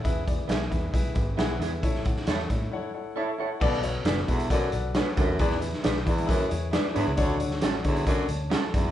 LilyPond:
<<
  \new Staff \with { instrumentName = "Grand piano" } { \time 4/4 \key e \mixolydian \tempo 4 = 135 <e' gis' b' e''>8 <e' gis' b' d''>8 <e' gis' b' e''>8 <e' gis' b' e''>8 <e' gis' b' e''>8 <e' gis' b' e''>8 <e' gis' b' fis''>8 <e' gis' b' e''>8 | <e' a' cis'' e''>8 <e' a' cis'' fis''>8 <e' a' cis'' fis''>8 <e' a' cis'' e''>8 <e' a' cis'' fis''>8 <e' a' cis'' fis''>8 <e' a' cis'' e''>8 <e' a' cis'' fis''>8 | <fis' a' b' d''>8 <fis' a' b' cis''>8 <fis' a' b' d''>8 <fis' a' b' e''>8 <fis' a' b' d''>8 <fis' a' b' d''>8 <fis' a' b' cis''>8 <fis' a' b' e''>8 | <e' gis' b' d''>8 <e' gis' b' e''>8 <e' gis' b' d''>8 <e' gis' b' d''>8 <e' gis' b' e''>8 <e' gis' b' cis''>8 <e' gis' b' d''>8 <e' gis' b' cis''>8 |
<d' fis' a' cis''>8 <d' fis' a' cis''>8 <d' fis' a' cis''>8 <d' fis' a' cis''>8 <d' fis' a' cis''>8 <cis'' a''>8 <a' fis''>8 <fis' d''>8 | }
  \new Staff \with { instrumentName = "Grand piano" } { \clef bass \time 4/4 \key e \mixolydian e4. r2 r8 | a,4. r2 r8 | b,4. r2 r8 | e4. r2 r8 |
d4. r2 r8 | }
  \new Staff \with { instrumentName = "Clean electric guitar" } { \time 4/4 \key e \mixolydian r4 <b e' gis'>16 r4. r16 <b e' gis'>16 r16 <b e' gis'>8 | r4 <e' a' cis''>16 r4. r16 <e' a' cis''>16 r16 <e' a' cis''>8 | r4 <d' a' b'>16 r4. r16 <d' a' b'>16 r16 <d' a' b'>8 | r4 <d' gis' b'>16 r4. r16 <d' gis' b'>16 r16 <d' gis' b'>8 |
r4 <cis' fis' a'>16 r4. r16 <cis' fis' a'>16 r8. | }
  \new Staff \with { instrumentName = "Baritone saxophone" } { \clef bass \time 4/4 \key e \mixolydian r1 | r1 | b,8 r4 e,8 fis,8 r4 fis,8 | e,8 r4 e,8 fis,8 r4 e,8 |
d,8 r4 e,8 fis,8 r4 e,8 | }
  \new Staff \with { instrumentName = "Picked electric bass" } { \clef bass \time 4/4 \key e \mixolydian e,,4 b,,8 e,8 b,,8 gis,,8 b,,8 e,8 | a,,4 e,8 a,8 r2 | b,,4 fis,,8 b,4 b,,8. r16 d,16 e,16 | e,4 b,,8 e4 e,8. r16 gis,16 cis,16 |
d,4 a,,8 d4 d,8. r16 fis,16 f,,16 | }
  \new DrumStaff \with { instrumentName = "Drums" } \drummode { \time 4/4 <hh bd>8 <hh bd>8 <hh sn>16 sn16 <hh bd>8 <hh bd>8 <hh bd>8 <hh sn>8 hh8 | <hh bd>16 sn16 <hh bd>16 sn16 <hh sn>16 sn16 <hh bd>8 r4 r4 | <cymc bd>16 sn16 hh8 <hh sn>16 sn16 <hh bd>16 hh16 <hh bd>8 hh8 <hh sn>8 <hh bd>8 | <hh bd>16 sn16 hh16 sn16 <hh sn>16 sn16 <hh bd>16 hh16 <hh bd>8 hh8 <hh sn>8 hh8 |
<hh bd>8 hh16 sn16 <hh sn>8 <hh bd>16 hh16 <hh bd>8 hh8 <hh sn>8 <hh bd>8 | }
>>